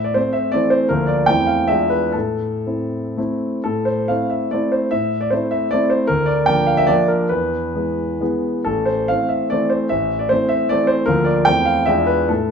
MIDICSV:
0, 0, Header, 1, 2, 480
1, 0, Start_track
1, 0, Key_signature, 0, "minor"
1, 0, Tempo, 376648
1, 1153, Time_signature, 3, 2, 24, 8
1, 1631, Tempo, 414938
1, 2111, Tempo, 451128
1, 2591, Tempo, 500835
1, 4031, Tempo, 443131
1, 4991, Tempo, 388601
1, 7391, Tempo, 416089
1, 8351, Tempo, 439883
1, 10751, Tempo, 398671
1, 12191, Tempo, 375940
1, 13151, Tempo, 426743
1, 14336, End_track
2, 0, Start_track
2, 0, Title_t, "Grand piano"
2, 0, Program_c, 0, 0
2, 0, Control_c, 0, 64, 127
2, 0, Note_on_c, 0, 45, 46
2, 0, Note_on_c, 0, 76, 70
2, 56, Note_on_c, 0, 74, 61
2, 183, Note_on_c, 0, 72, 68
2, 185, Note_off_c, 0, 45, 0
2, 194, Note_off_c, 0, 74, 0
2, 201, Note_on_c, 0, 57, 36
2, 208, Note_on_c, 0, 60, 40
2, 223, Control_c, 0, 64, 0
2, 227, Note_off_c, 0, 76, 0
2, 416, Note_on_c, 0, 76, 65
2, 446, Note_off_c, 0, 72, 0
2, 646, Note_off_c, 0, 57, 0
2, 649, Note_off_c, 0, 60, 0
2, 658, Note_on_c, 0, 74, 81
2, 676, Note_off_c, 0, 76, 0
2, 682, Note_on_c, 0, 52, 45
2, 687, Note_on_c, 0, 57, 44
2, 697, Note_on_c, 0, 60, 51
2, 894, Note_on_c, 0, 72, 68
2, 908, Note_off_c, 0, 74, 0
2, 1099, Note_off_c, 0, 52, 0
2, 1102, Note_off_c, 0, 57, 0
2, 1108, Note_off_c, 0, 60, 0
2, 1132, Note_on_c, 0, 70, 75
2, 1137, Note_off_c, 0, 72, 0
2, 1150, Note_on_c, 0, 53, 37
2, 1153, Note_on_c, 0, 38, 54
2, 1157, Note_on_c, 0, 58, 36
2, 1168, Note_on_c, 0, 65, 36
2, 1347, Control_c, 0, 64, 127
2, 1360, Note_on_c, 0, 74, 70
2, 1373, Note_off_c, 0, 70, 0
2, 1581, Note_off_c, 0, 53, 0
2, 1586, Note_off_c, 0, 58, 0
2, 1592, Note_off_c, 0, 65, 0
2, 1610, Note_on_c, 0, 79, 87
2, 1617, Note_off_c, 0, 38, 0
2, 1619, Note_off_c, 0, 74, 0
2, 1632, Note_on_c, 0, 40, 49
2, 1634, Note_on_c, 0, 57, 36
2, 1640, Note_on_c, 0, 60, 34
2, 1643, Control_c, 0, 64, 0
2, 1643, Note_on_c, 0, 64, 38
2, 1838, Control_c, 0, 64, 127
2, 1848, Note_on_c, 0, 77, 57
2, 1858, Note_off_c, 0, 79, 0
2, 2067, Note_off_c, 0, 57, 0
2, 2070, Note_off_c, 0, 60, 0
2, 2071, Note_off_c, 0, 64, 0
2, 2086, Note_off_c, 0, 40, 0
2, 2088, Note_on_c, 0, 76, 78
2, 2102, Note_off_c, 0, 77, 0
2, 2103, Note_on_c, 0, 40, 48
2, 2104, Note_on_c, 0, 56, 37
2, 2113, Note_on_c, 0, 62, 35
2, 2119, Note_on_c, 0, 65, 38
2, 2126, Control_c, 0, 64, 0
2, 2320, Control_c, 0, 64, 127
2, 2325, Note_on_c, 0, 71, 59
2, 2334, Note_off_c, 0, 76, 0
2, 2545, Note_off_c, 0, 56, 0
2, 2549, Note_off_c, 0, 62, 0
2, 2552, Note_off_c, 0, 65, 0
2, 2568, Note_on_c, 0, 69, 58
2, 2573, Note_off_c, 0, 40, 0
2, 2581, Note_off_c, 0, 71, 0
2, 2590, Note_on_c, 0, 45, 43
2, 2601, Control_c, 0, 64, 0
2, 2796, Control_c, 0, 64, 127
2, 3067, Note_off_c, 0, 45, 0
2, 3088, Note_on_c, 0, 60, 31
2, 3094, Note_on_c, 0, 64, 34
2, 3538, Note_off_c, 0, 60, 0
2, 3541, Note_off_c, 0, 64, 0
2, 3563, Note_off_c, 0, 69, 0
2, 3575, Note_on_c, 0, 57, 38
2, 3581, Note_on_c, 0, 60, 38
2, 3582, Note_on_c, 0, 64, 43
2, 3588, Control_c, 0, 64, 0
2, 3994, Note_off_c, 0, 57, 0
2, 3997, Note_off_c, 0, 60, 0
2, 3998, Note_off_c, 0, 64, 0
2, 4020, Note_on_c, 0, 69, 63
2, 4034, Note_on_c, 0, 45, 45
2, 4251, Control_c, 0, 64, 127
2, 4251, Note_on_c, 0, 72, 56
2, 4266, Note_off_c, 0, 69, 0
2, 4500, Note_on_c, 0, 77, 68
2, 4507, Note_off_c, 0, 45, 0
2, 4510, Note_off_c, 0, 72, 0
2, 4518, Note_on_c, 0, 57, 34
2, 4519, Note_on_c, 0, 60, 32
2, 4527, Note_on_c, 0, 64, 36
2, 4533, Control_c, 0, 64, 0
2, 4734, Note_on_c, 0, 76, 51
2, 4751, Note_off_c, 0, 77, 0
2, 4947, Note_off_c, 0, 57, 0
2, 4947, Note_off_c, 0, 60, 0
2, 4951, Note_off_c, 0, 64, 0
2, 4966, Note_on_c, 0, 74, 67
2, 4978, Note_off_c, 0, 76, 0
2, 4986, Note_on_c, 0, 57, 38
2, 4992, Note_on_c, 0, 60, 40
2, 4996, Note_on_c, 0, 64, 44
2, 5216, Note_on_c, 0, 72, 58
2, 5227, Note_off_c, 0, 74, 0
2, 5424, Note_off_c, 0, 57, 0
2, 5428, Note_off_c, 0, 60, 0
2, 5430, Note_off_c, 0, 64, 0
2, 5452, Note_on_c, 0, 76, 70
2, 5463, Note_off_c, 0, 72, 0
2, 5471, Note_on_c, 0, 45, 43
2, 5698, Control_c, 0, 64, 127
2, 5820, Note_on_c, 0, 74, 62
2, 5821, Note_off_c, 0, 76, 0
2, 5941, Note_on_c, 0, 72, 64
2, 5944, Note_off_c, 0, 45, 0
2, 5955, Note_off_c, 0, 74, 0
2, 5966, Note_on_c, 0, 57, 36
2, 5971, Note_on_c, 0, 60, 34
2, 5973, Control_c, 0, 64, 0
2, 5973, Note_on_c, 0, 64, 39
2, 6194, Note_on_c, 0, 76, 66
2, 6204, Note_off_c, 0, 72, 0
2, 6405, Note_off_c, 0, 57, 0
2, 6408, Note_off_c, 0, 60, 0
2, 6409, Note_off_c, 0, 64, 0
2, 6439, Note_on_c, 0, 74, 83
2, 6442, Note_off_c, 0, 76, 0
2, 6464, Note_on_c, 0, 60, 46
2, 6465, Note_on_c, 0, 57, 45
2, 6472, Note_on_c, 0, 64, 51
2, 6674, Note_on_c, 0, 72, 68
2, 6675, Note_off_c, 0, 74, 0
2, 6867, Note_off_c, 0, 60, 0
2, 6868, Note_off_c, 0, 57, 0
2, 6872, Note_off_c, 0, 64, 0
2, 6892, Note_on_c, 0, 70, 84
2, 6903, Note_off_c, 0, 72, 0
2, 6918, Note_on_c, 0, 38, 54
2, 7121, Note_on_c, 0, 74, 75
2, 7131, Note_off_c, 0, 70, 0
2, 7132, Control_c, 0, 64, 127
2, 7369, Note_on_c, 0, 79, 88
2, 7382, Note_off_c, 0, 38, 0
2, 7382, Note_off_c, 0, 74, 0
2, 7393, Note_on_c, 0, 53, 42
2, 7395, Note_on_c, 0, 58, 42
2, 7402, Note_on_c, 0, 62, 44
2, 7610, Note_on_c, 0, 77, 68
2, 7624, Note_off_c, 0, 79, 0
2, 7731, Note_on_c, 0, 76, 83
2, 7742, Note_off_c, 0, 77, 0
2, 7826, Note_off_c, 0, 53, 0
2, 7828, Note_off_c, 0, 58, 0
2, 7831, Note_off_c, 0, 62, 0
2, 7839, Note_on_c, 0, 74, 91
2, 7859, Note_on_c, 0, 58, 50
2, 7860, Note_off_c, 0, 76, 0
2, 7863, Note_on_c, 0, 53, 51
2, 7869, Note_on_c, 0, 62, 53
2, 7887, Control_c, 0, 64, 0
2, 8083, Note_on_c, 0, 70, 69
2, 8092, Note_off_c, 0, 74, 0
2, 8299, Note_off_c, 0, 58, 0
2, 8301, Note_off_c, 0, 53, 0
2, 8304, Note_off_c, 0, 62, 0
2, 8329, Note_on_c, 0, 71, 67
2, 8339, Note_off_c, 0, 70, 0
2, 8351, Note_on_c, 0, 40, 46
2, 8579, Control_c, 0, 64, 127
2, 8820, Note_off_c, 0, 40, 0
2, 8827, Note_on_c, 0, 52, 35
2, 8835, Note_on_c, 0, 56, 31
2, 8836, Note_on_c, 0, 59, 37
2, 9279, Note_off_c, 0, 52, 0
2, 9284, Note_off_c, 0, 56, 0
2, 9284, Note_off_c, 0, 59, 0
2, 9316, Note_off_c, 0, 71, 0
2, 9328, Note_on_c, 0, 56, 38
2, 9329, Note_on_c, 0, 52, 38
2, 9337, Note_on_c, 0, 59, 43
2, 9344, Control_c, 0, 64, 0
2, 9770, Note_off_c, 0, 56, 0
2, 9771, Note_off_c, 0, 52, 0
2, 9775, Note_off_c, 0, 59, 0
2, 9808, Note_on_c, 0, 69, 71
2, 9823, Note_on_c, 0, 33, 49
2, 10033, Control_c, 0, 64, 127
2, 10036, Note_on_c, 0, 72, 58
2, 10044, Note_off_c, 0, 69, 0
2, 10277, Note_off_c, 0, 33, 0
2, 10281, Note_off_c, 0, 72, 0
2, 10286, Note_on_c, 0, 77, 78
2, 10304, Control_c, 0, 64, 0
2, 10308, Note_on_c, 0, 52, 34
2, 10310, Note_on_c, 0, 57, 33
2, 10314, Note_on_c, 0, 60, 35
2, 10508, Note_on_c, 0, 76, 56
2, 10522, Note_off_c, 0, 77, 0
2, 10719, Note_off_c, 0, 52, 0
2, 10720, Note_off_c, 0, 57, 0
2, 10722, Note_off_c, 0, 60, 0
2, 10740, Note_on_c, 0, 74, 75
2, 10744, Note_off_c, 0, 76, 0
2, 10757, Note_on_c, 0, 52, 45
2, 10764, Note_on_c, 0, 57, 45
2, 10765, Note_on_c, 0, 60, 45
2, 10975, Note_on_c, 0, 72, 60
2, 10990, Note_off_c, 0, 74, 0
2, 11186, Note_off_c, 0, 52, 0
2, 11190, Note_off_c, 0, 57, 0
2, 11190, Note_off_c, 0, 60, 0
2, 11213, Note_on_c, 0, 76, 73
2, 11221, Note_off_c, 0, 72, 0
2, 11236, Note_on_c, 0, 33, 48
2, 11456, Control_c, 0, 64, 127
2, 11572, Note_on_c, 0, 74, 65
2, 11577, Note_off_c, 0, 76, 0
2, 11692, Note_on_c, 0, 72, 75
2, 11699, Note_off_c, 0, 33, 0
2, 11703, Note_off_c, 0, 74, 0
2, 11713, Note_on_c, 0, 52, 35
2, 11716, Note_on_c, 0, 57, 37
2, 11720, Note_on_c, 0, 60, 43
2, 11727, Control_c, 0, 64, 0
2, 11927, Note_on_c, 0, 76, 72
2, 11947, Note_off_c, 0, 72, 0
2, 12145, Note_off_c, 0, 52, 0
2, 12146, Note_off_c, 0, 57, 0
2, 12149, Note_off_c, 0, 60, 0
2, 12177, Note_off_c, 0, 76, 0
2, 12177, Note_on_c, 0, 74, 87
2, 12197, Note_on_c, 0, 52, 47
2, 12203, Note_on_c, 0, 57, 51
2, 12209, Note_on_c, 0, 60, 53
2, 12403, Note_on_c, 0, 72, 76
2, 12422, Note_off_c, 0, 74, 0
2, 12616, Note_off_c, 0, 52, 0
2, 12619, Note_off_c, 0, 57, 0
2, 12622, Note_off_c, 0, 60, 0
2, 12639, Note_on_c, 0, 70, 84
2, 12646, Note_off_c, 0, 72, 0
2, 12656, Note_on_c, 0, 38, 59
2, 12659, Note_on_c, 0, 53, 43
2, 12668, Note_on_c, 0, 58, 42
2, 12677, Note_on_c, 0, 65, 41
2, 12883, Note_on_c, 0, 74, 73
2, 12885, Note_off_c, 0, 70, 0
2, 12886, Control_c, 0, 64, 127
2, 13103, Note_off_c, 0, 53, 0
2, 13108, Note_off_c, 0, 58, 0
2, 13112, Note_off_c, 0, 65, 0
2, 13136, Note_off_c, 0, 38, 0
2, 13141, Note_on_c, 0, 79, 94
2, 13146, Note_off_c, 0, 74, 0
2, 13158, Note_on_c, 0, 57, 41
2, 13166, Note_on_c, 0, 40, 52
2, 13167, Control_c, 0, 64, 0
2, 13169, Note_on_c, 0, 60, 39
2, 13175, Note_on_c, 0, 64, 40
2, 13338, Control_c, 0, 64, 127
2, 13373, Note_on_c, 0, 77, 69
2, 13378, Note_off_c, 0, 79, 0
2, 13569, Note_off_c, 0, 57, 0
2, 13575, Note_off_c, 0, 60, 0
2, 13578, Note_off_c, 0, 64, 0
2, 13599, Note_on_c, 0, 76, 87
2, 13603, Note_off_c, 0, 40, 0
2, 13606, Note_off_c, 0, 77, 0
2, 13618, Note_on_c, 0, 56, 42
2, 13619, Note_on_c, 0, 40, 59
2, 13626, Control_c, 0, 64, 0
2, 13628, Note_on_c, 0, 62, 42
2, 13635, Note_on_c, 0, 65, 43
2, 13834, Note_on_c, 0, 71, 65
2, 13841, Note_off_c, 0, 76, 0
2, 13842, Control_c, 0, 64, 127
2, 14054, Note_off_c, 0, 56, 0
2, 14060, Note_off_c, 0, 62, 0
2, 14063, Note_off_c, 0, 65, 0
2, 14084, Note_on_c, 0, 69, 64
2, 14086, Note_off_c, 0, 40, 0
2, 14090, Note_off_c, 0, 71, 0
2, 14096, Note_on_c, 0, 45, 46
2, 14110, Control_c, 0, 64, 0
2, 14336, Note_off_c, 0, 45, 0
2, 14336, Note_off_c, 0, 69, 0
2, 14336, End_track
0, 0, End_of_file